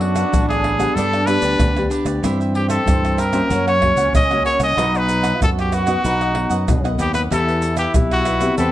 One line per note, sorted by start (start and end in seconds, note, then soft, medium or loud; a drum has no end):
0.00 0.23 F#2 loud
0.00 0.29 F#3 medium
0.00 0.27 B3 medium
0.00 0.27 D4 medium
0.00 0.96 D4 loud
0.00 0.48 F#4 medium
0.00 0.27 A4 medium
0.00 muted cavaquinho stroke soft
0.00 pandeiro medium
0.16 0.64 A4 medium
0.16 0.63 B4 medium
0.16 0.63 F#5 medium
0.16 pandeiro medium
0.16 tamborim medium
0.16 shaker medium
0.33 0.87 A1 medium
0.33 0.93 F#3 medium
0.33 0.76 B3 medium
0.33 0.75 D4 medium
0.33 0.76 A4 medium
0.33 pandeiro medium
0.33 tamborim medium
0.33 shaker medium
0.33 surdo loud
0.49 0.96 G#4 medium
0.49 pandeiro soft
0.49 tamborim medium
0.49 shaker soft
0.64 0.79 D4 soft
0.64 0.79 A4 medium
0.64 0.78 B4 medium
0.64 0.78 F#5 medium
0.64 pandeiro medium
0.64 tamborim medium
0.79 1.22 B3 medium
0.79 1.22 D4 medium
0.79 1.22 G4 medium
0.79 0.95 A4 medium
0.79 0.94 B4 medium
0.79 0.94 F#5 medium
0.79 pandeiro medium
0.79 tamborim medium
0.79 shaker medium
0.95 1.36 G2 medium
0.95 1.57 G3 medium
0.95 1.11 D4 medium
0.95 1.93 D4 medium
0.95 1.11 G4 medium
0.95 1.28 A4 loud
0.95 1.12 B4 medium
0.95 1.12 D5 medium
0.95 pandeiro medium
0.95 shaker medium
0.95 surdo medium
1.13 1.27 G4 soft
1.13 1.27 B4 soft
1.13 1.27 D5 soft
1.13 pandeiro soft
1.13 tamborim medium
1.13 shaker soft
1.26 1.70 B3 medium
1.26 1.70 D4 medium
1.26 1.70 G4 medium
1.26 1.91 B4 loud
1.26 muted cavaquinho stroke soft
1.26 pandeiro medium
1.26 tamborim medium
1.26 shaker medium
1.42 1.56 D2 medium
1.42 1.75 G4 medium
1.42 1.74 B4 medium
1.42 1.74 D5 medium
1.42 pandeiro medium
1.42 shaker medium
1.59 1.86 D2 medium
1.59 2.20 D3 medium
1.59 pandeiro medium
1.59 tamborim medium
1.59 shaker medium
1.59 surdo loud
1.77 2.19 B3 medium
1.77 2.19 D4 medium
1.77 2.19 G4 medium
1.77 1.89 G4 soft
1.77 1.90 B4 soft
1.77 1.91 D5 medium
1.77 pandeiro soft
1.77 tamborim medium
1.77 shaker soft
1.90 2.05 D4 medium
1.90 2.06 G4 medium
1.90 2.05 B4 medium
1.90 2.04 D5 medium
1.90 pandeiro medium
1.90 shaker medium
2.05 2.20 D2 loud
2.05 2.22 G4 soft
2.05 2.22 B4 soft
2.05 2.21 D5 soft
2.05 pandeiro medium
2.05 tamborim medium
2.05 shaker medium
2.23 2.77 G2 loud
2.23 2.84 G2 medium
2.23 2.82 E3 medium
2.23 3.44 C4 loud
2.23 2.82 C4 medium
2.23 2.38 E4 medium
2.23 2.83 E4 medium
2.23 2.38 G4 medium
2.23 2.38 C5 medium
2.23 2.39 E5 medium
2.23 pandeiro medium
2.23 tamborim medium
2.23 shaker medium
2.23 surdo medium
2.40 2.53 G4 soft
2.40 2.54 C5 soft
2.40 2.54 E5 soft
2.40 pandeiro soft
2.40 shaker soft
2.54 2.69 G4 medium
2.54 muted cavaquinho stroke soft
2.54 pandeiro medium
2.69 3.17 G4 medium
2.69 3.21 A4 medium
2.69 3.16 C5 medium
2.69 3.16 E5 medium
2.69 pandeiro medium
2.69 tamborim medium
2.69 shaker medium
2.86 3.40 G2 medium
2.86 3.48 G2 medium
2.86 3.17 E3 medium
2.86 3.17 C4 soft
2.86 3.17 E4 medium
2.86 pandeiro medium
2.86 tamborim medium
2.86 shaker medium
2.86 surdo loud
3.05 pandeiro soft
3.05 tamborim medium
3.05 shaker soft
3.17 3.33 E4 soft
3.17 3.33 G4 soft
3.17 3.67 A#4 loud
3.17 3.33 C5 medium
3.17 3.31 E5 medium
3.17 pandeiro medium
3.17 tamborim medium
3.17 shaker medium
3.33 3.76 A#3 medium
3.33 3.76 C#4 medium
3.33 3.77 F#4 medium
3.33 3.49 G4 medium
3.33 3.49 C5 medium
3.33 3.48 E5 medium
3.33 pandeiro medium
3.33 tamborim medium
3.33 shaker medium
3.44 3.53 C4 medium
3.50 3.91 F#2 medium
3.50 4.11 F#3 medium
3.50 4.79 C#4 loud
3.50 3.65 F#4 medium
3.50 3.65 A#4 medium
3.50 3.66 C#5 medium
3.50 3.66 F#5 medium
3.50 pandeiro medium
3.50 shaker medium
3.50 surdo medium
3.67 3.81 A#4 soft
3.67 3.81 C#5 soft
3.67 4.12 C#5 loud
3.67 3.81 F#5 medium
3.67 pandeiro soft
3.67 tamborim medium
3.67 shaker soft
3.82 4.12 A#3 medium
3.82 4.12 C#4 medium
3.82 4.12 F#4 medium
3.82 muted cavaquinho stroke soft
3.82 pandeiro medium
3.82 tamborim medium
3.82 surdo medium
3.96 4.10 C#2 medium
3.96 4.29 A#4 medium
3.96 4.28 C#5 medium
3.96 4.28 F#5 medium
3.96 pandeiro medium
3.96 shaker medium
4.13 4.40 C#2 medium
4.13 4.74 C#3 medium
4.13 4.44 D#5 loud
4.13 pandeiro medium
4.13 tamborim medium
4.13 shaker medium
4.13 surdo loud
4.30 4.73 A#3 medium
4.30 4.73 C#4 medium
4.30 4.74 F#4 medium
4.30 4.44 A#4 soft
4.30 4.45 C#5 soft
4.30 4.45 F#5 soft
4.30 pandeiro soft
4.30 tamborim medium
4.30 shaker soft
4.45 4.60 F#4 medium
4.45 4.60 A#4 medium
4.45 4.60 C#5 loud
4.45 4.59 C#5 medium
4.45 4.58 F#5 medium
4.45 pandeiro medium
4.59 4.74 C2 medium
4.59 4.76 A#4 soft
4.59 4.76 C#5 soft
4.59 4.99 D#5 loud
4.59 4.75 F#5 soft
4.59 pandeiro medium
4.59 tamborim medium
4.59 shaker medium
4.76 5.31 B1 loud
4.76 5.38 B2 medium
4.76 5.19 B3 medium
4.76 5.37 D#4 loud
4.76 5.19 D#4 medium
4.76 4.92 F#4 medium
4.76 5.19 F#4 medium
4.76 4.92 B4 medium
4.76 4.92 D#5 medium
4.76 4.92 F#5 medium
4.76 pandeiro medium
4.76 tamborim medium
4.76 shaker medium
4.76 surdo medium
4.94 5.08 B4 soft
4.94 5.43 B4 loud
4.94 5.08 D#5 soft
4.94 5.08 F#5 soft
4.94 pandeiro soft
4.94 shaker soft
5.08 muted cavaquinho stroke soft
5.08 pandeiro medium
5.08 shaker medium
5.23 5.71 B4 medium
5.23 5.71 D#5 medium
5.23 5.70 F#5 medium
5.23 pandeiro medium
5.23 tamborim medium
5.23 shaker medium
5.35 5.44 F4 medium
5.41 5.95 F#2 medium
5.41 6.02 F#2 medium
5.41 5.84 B3 medium
5.41 5.84 D#4 medium
5.41 6.04 F#4 medium
5.41 5.84 F#4 medium
5.41 5.50 A4 medium
5.41 pandeiro medium
5.41 tamborim medium
5.41 shaker medium
5.41 surdo loud
5.59 5.76 G4 medium
5.59 pandeiro soft
5.59 tamborim medium
5.59 shaker soft
5.72 5.87 F#4 medium
5.72 6.74 F#4 medium
5.72 5.87 B4 soft
5.72 5.87 D#5 medium
5.72 5.86 F#5 medium
5.72 pandeiro medium
5.72 tamborim medium
5.72 shaker medium
5.87 6.31 B3 medium
5.87 6.31 D#4 medium
5.87 6.31 F#4 medium
5.87 6.03 B4 medium
5.87 6.03 D#5 medium
5.87 6.02 F#5 medium
5.87 pandeiro medium
5.87 tamborim medium
5.87 shaker medium
6.04 6.45 B1 medium
6.04 6.65 B2 medium
6.04 6.96 D#4 medium
6.04 6.19 F#4 medium
6.04 6.20 B4 medium
6.04 6.20 D#5 medium
6.04 6.20 F#5 medium
6.04 pandeiro medium
6.04 shaker medium
6.04 surdo medium
6.21 6.34 B4 soft
6.21 6.35 D#5 soft
6.21 6.35 F#5 soft
6.21 pandeiro soft
6.21 tamborim medium
6.21 shaker soft
6.35 6.55 B3 medium
6.35 6.55 D#4 medium
6.35 6.55 F#4 medium
6.35 muted cavaquinho stroke soft
6.35 pandeiro medium
6.35 tamborim medium
6.49 6.65 F#2 medium
6.49 6.82 B4 medium
6.49 6.82 D#5 medium
6.49 6.81 F#5 medium
6.49 pandeiro medium
6.49 shaker medium
6.68 6.97 B1 medium
6.68 7.28 F#2 medium
6.68 6.78 B3 medium
6.68 6.78 D#4 medium
6.68 6.78 F#4 medium
6.68 pandeiro medium
6.68 tamborim medium
6.68 shaker medium
6.68 surdo medium
6.83 7.26 B3 medium
6.83 7.27 D#4 medium
6.83 7.27 F#4 medium
6.83 6.98 B4 soft
6.83 6.99 D#5 soft
6.83 6.99 F#5 soft
6.83 pandeiro soft
6.83 tamborim medium
6.83 shaker soft
6.98 7.28 D#2 medium
6.98 7.14 F#4 medium
6.98 7.14 G4 medium
6.98 7.13 B4 medium
6.98 7.13 D#5 medium
6.98 7.12 F#5 medium
6.98 pandeiro medium
6.98 shaker medium
7.13 7.30 B4 soft
7.13 7.22 B4 medium
7.13 7.29 D#5 soft
7.13 7.29 F#5 soft
7.13 pandeiro medium
7.13 tamborim medium
7.13 shaker medium
7.30 7.85 E2 loud
7.30 7.92 E3 medium
7.30 7.72 B3 medium
7.30 7.46 E4 medium
7.30 7.72 E4 medium
7.30 8.61 E4 loud
7.30 7.46 G4 medium
7.30 7.72 G4 medium
7.30 7.76 A4 medium
7.30 7.46 B4 medium
7.30 7.46 E5 medium
7.30 pandeiro medium
7.30 tamborim medium
7.30 shaker medium
7.30 surdo medium
7.47 7.61 G4 soft
7.47 7.62 B4 soft
7.47 7.62 E5 soft
7.47 pandeiro soft
7.47 shaker soft
7.62 muted cavaquinho stroke soft
7.62 pandeiro medium
7.62 shaker medium
7.77 7.93 G4 medium
7.77 8.25 G4 medium
7.77 8.25 B4 medium
7.77 8.24 E5 medium
7.77 pandeiro medium
7.77 tamborim medium
7.77 shaker medium
7.94 8.49 B1 medium
7.94 8.55 B2 medium
7.94 8.25 B3 medium
7.94 8.25 E4 medium
7.94 8.25 G4 medium
7.94 pandeiro medium
7.94 tamborim medium
7.94 shaker medium
7.94 surdo loud
8.11 8.56 F#4 medium
8.11 pandeiro soft
8.11 tamborim medium
8.11 shaker soft
8.25 8.41 E4 medium
8.25 8.41 G4 medium
8.25 8.41 B4 medium
8.25 8.39 E5 medium
8.25 pandeiro medium
8.25 tamborim medium
8.25 shaker medium
8.41 8.72 B3 medium
8.41 8.72 C4 medium
8.41 8.72 G4 medium
8.41 8.57 G4 medium
8.41 8.57 B4 medium
8.41 8.56 E5 medium
8.41 pandeiro medium
8.41 tamborim medium
8.41 shaker medium
8.58 8.72 E2 medium
8.58 8.72 E3 medium
8.58 8.72 C4 medium
8.58 8.72 G4 medium
8.58 8.72 A4 medium
8.58 8.72 B4 medium
8.58 8.72 C5 medium
8.58 8.72 E5 medium
8.58 pandeiro medium
8.58 shaker medium
8.58 surdo medium